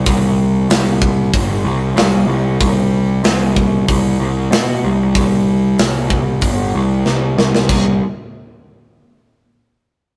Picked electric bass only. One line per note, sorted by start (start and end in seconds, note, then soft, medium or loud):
0.07 0.66 C2 medium
0.70 1.29 C2 medium
1.33 1.63 G1 medium
1.64 1.94 C2 medium
1.96 2.26 C2 medium
2.27 2.57 C2 medium
2.61 3.20 C2 loud
3.24 3.83 C2 medium
3.89 4.18 C2 medium
4.19 4.48 C2 medium
4.51 4.80 B2 medium
4.84 5.13 C2 medium
5.16 5.74 C2 medium
5.80 6.38 C2 medium
6.42 6.71 G1 medium
6.75 7.03 C2 medium
7.06 7.35 C2 medium
7.38 7.67 C2 medium
7.70 7.99 C2 medium